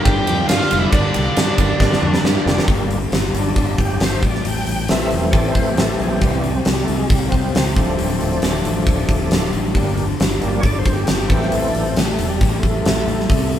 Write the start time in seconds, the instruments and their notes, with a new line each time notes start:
Already playing: overdriven electric guitar G2 D3 G3, tonewheel organ A#3 D4 G4 D5
0.04 fingered electric bass G1, overdriven electric guitar G2 D3, upright piano D4 G4 A#4 D5, lead electric guitar G4 G5, kick, ride
0.08 overdriven electric guitar G3
0.27 fingered electric bass F2, overdriven electric guitar G2 D3 G3, upright piano D4 G4 A#4 D5, ride
0.48 overdriven electric guitar G2 D3 G3, fingered electric bass G2, upright piano D4 G4 A#4 D5, lead electric guitar F4 F5, snare, ride
0.62 snare
0.71 fingered electric bass F1, upright piano D4 G4 A#4 D5, snare, ride
0.80 lead electric guitar E4 E5
0.89 fingered electric bass G1, overdriven electric guitar G2 D3, lead electric guitar D4 D5, upright piano D4 G4 A#4 D5, kick, ride
0.94 overdriven electric guitar D3 G3
1.13 fingered electric bass C2, upright piano D4 G4 A#4 D5, ride
1.35 fingered electric bass G2, upright piano D4 G4 A#4 D5, snare, ride
1.57 fingered electric bass G1, overdriven electric guitar G2 D3 G3, upright piano D4 G4 A#4 D5, kick, ride
1.80 fingered electric bass G1, overdriven electric guitar G2 D3 G3, upright piano D4 G4 A#4 D5, kick, snare
1.93 snare
2.01 fingered electric bass F2, overdriven electric guitar G2 D3 G3, upright piano D4 G4 A#4 D5
2.14 snare
2.23 overdriven electric guitar G2 D3 G3, fingered electric bass G2, upright piano D4 G4 A#4 D5, snare
2.45 fingered electric bass F1, upright piano D4 G4 A#4 D5, snare
2.58 snare
2.67 fingered electric bass G1, overdriven electric guitar G2 D3 G3, tonewheel organ G3 A#3 D4, kick, open hi-hat
2.91 open hi-hat
3.12 fingered electric bass G1, overdriven electric guitar G2 D3 G3, snare, open hi-hat
3.33 fingered electric bass G1, overdriven electric guitar G2 D3 G3, tonewheel organ C#4, open hi-hat
3.39 tonewheel organ D4
3.56 fingered electric bass G1, overdriven electric guitar G2 D3 G3, kick, open hi-hat
3.78 fingered electric bass G1, tonewheel organ G4, kick, open hi-hat
4.00 fingered electric bass G1, overdriven electric guitar G2 D3 G3, tonewheel organ C5, snare, open hi-hat
4.22 fingered electric bass A1, overdriven electric guitar A2 E3 A3, kick, open hi-hat
4.26 tonewheel organ D5
4.35 snare
4.45 fingered electric bass A1, overdriven electric guitar A2 E3 A3, tonewheel organ G5, open hi-hat
4.67 fingered electric bass A1, open hi-hat
4.88 fingered electric bass A1, overdriven electric guitar A2 E3 A3, tonewheel organ E3 A3 C4 E5, snare, open hi-hat
5.11 fingered electric bass E1, overdriven electric guitar A2 E3 A3, open hi-hat
5.31 fingered electric bass A1, overdriven electric guitar A2 E3 A3, tonewheel organ C#5, kick, open hi-hat
5.37 tonewheel organ D5
5.52 fingered electric bass A1, tonewheel organ C5, kick, open hi-hat
5.68 tonewheel organ G4
5.77 fingered electric bass A1, overdriven electric guitar A2 E3 A3, snare, open hi-hat
5.83 tonewheel organ A4
5.98 fingered electric bass A#1, overdriven electric guitar A2 E3 A3, tonewheel organ G#4, open hi-hat
6.03 tonewheel organ E3 A3 C4
6.13 tonewheel organ G4
6.21 fingered electric bass C2, overdriven electric guitar C3 G3 C4, tonewheel organ E3 G3 C4, kick, open hi-hat
6.42 tonewheel organ D4, open hi-hat
6.55 tonewheel organ C4
6.65 fingered electric bass C2, overdriven electric guitar C3 G3 C4, snare, open hi-hat
6.72 tonewheel organ G3
6.84 overdriven electric guitar C3, tonewheel organ A3, open hi-hat
6.89 fingered electric bass C2, overdriven electric guitar G3 C4
6.98 tonewheel organ G#3
7.09 fingered electric bass C2, overdriven electric guitar C3 G3 C4, tonewheel organ G3, kick, open hi-hat
7.29 fingered electric bass C2, tonewheel organ C4, kick, open hi-hat
7.53 fingered electric bass C#2, overdriven electric guitar C3 G3 C4, snare, open hi-hat
7.76 fingered electric bass D1, overdriven electric guitar D2 A2 D3, tonewheel organ F3 A3 D4, kick, open hi-hat
7.98 fingered electric bass D1, overdriven electric guitar D2 A2 D3, open hi-hat
8.21 fingered electric bass D1, open hi-hat
8.42 fingered electric bass D1, overdriven electric guitar D2 A2 D3, snare, open hi-hat
8.64 fingered electric bass A1, overdriven electric guitar D2 A2 D3, open hi-hat
8.87 fingered electric bass D1, overdriven electric guitar D2 A2 D3, kick, open hi-hat
9.09 fingered electric bass D1, kick, open hi-hat
9.30 fingered electric bass D1, overdriven electric guitar D2 A2 D3, snare, open hi-hat
9.51 fingered electric bass A1, overdriven electric guitar D2 A2 D3, open hi-hat
9.75 fingered electric bass G1, overdriven electric guitar G2 D3 G3, tonewheel organ G3 A#3 D4, kick, open hi-hat
9.97 open hi-hat
10.19 fingered electric bass G1, overdriven electric guitar G2 D3 G3, snare, open hi-hat
10.41 fingered electric bass G1, overdriven electric guitar G2 D3 G3, tonewheel organ G3 A#3 D4, open hi-hat
10.60 fingered electric bass G1, overdriven electric guitar G2 D3, tonewheel organ C#5, kick, open hi-hat
10.64 overdriven electric guitar G3, tonewheel organ D5
10.79 tonewheel organ C5
10.85 fingered electric bass G1, kick, open hi-hat
10.93 tonewheel organ G4
11.07 fingered electric bass G1, overdriven electric guitar G2 D3 G3, tonewheel organ G4, snare, open hi-hat
11.25 tonewheel organ G4
11.30 fingered electric bass A1, overdriven electric guitar A2 E3 A3, tonewheel organ E3 A3 C4, kick, open hi-hat
11.40 tonewheel organ G4, snare
11.52 fingered electric bass A1, overdriven electric guitar A2 E3 A3, tonewheel organ C4, open hi-hat
11.69 tonewheel organ D4
11.74 fingered electric bass A1, open hi-hat
11.82 tonewheel organ C4
11.96 fingered electric bass A1, overdriven electric guitar A2 E3 A3, tonewheel organ G3, snare, open hi-hat
12.13 tonewheel organ A3
12.19 fingered electric bass E1, overdriven electric guitar A2 E3 A3, open hi-hat
12.28 tonewheel organ G3
12.41 fingered electric bass A1, overdriven electric guitar A2 E3 A3, tonewheel organ G3, kick, open hi-hat
12.59 fingered electric bass A1, tonewheel organ A3, kick, open hi-hat
12.85 fingered electric bass A1, overdriven electric guitar A2 E3 A3, snare, open hi-hat
13.07 fingered electric bass A1, overdriven electric guitar A2 E3 A3, open hi-hat
13.20 snare
13.28 fingered electric bass C2, overdriven electric guitar C3 G3 C4, kick, open hi-hat
13.52 open hi-hat